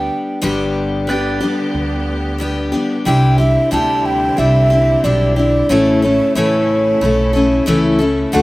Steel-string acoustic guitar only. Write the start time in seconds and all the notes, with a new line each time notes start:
Already playing: G3 B3 D4 G4
0.42 G2 D3 G3 B3 D4 G4
1.07 G3 B3 D4 G4
1.40 G3 B3 D4 G4
2.38 G3 B3 D4 G4
2.72 G3 B3 D4 G4
3.05 C3 G3 D4 E4 G4
3.38 D4 E4 G4
3.71 C3 G3 D4 E4 G4
4.37 G3 D4 E4 G4
4.70 D4 E4 G4
5.04 G3 D4 E4 G4
5.36 D4 E4 G4
5.69 A2 E3 A3 C#4 E4 A4
6.02 A3 C#4 E4 A4
6.35 A2 E3 A3 C#4 E4 A4
7.01 A3 C#4 E4 A4
7.33 A3 C#4 E4 A4
7.66 A2 E3 A3 C#4 E4 A4
7.99 A3 C#4 E4 A4
8.32 D3 A3 D4 F#4 A4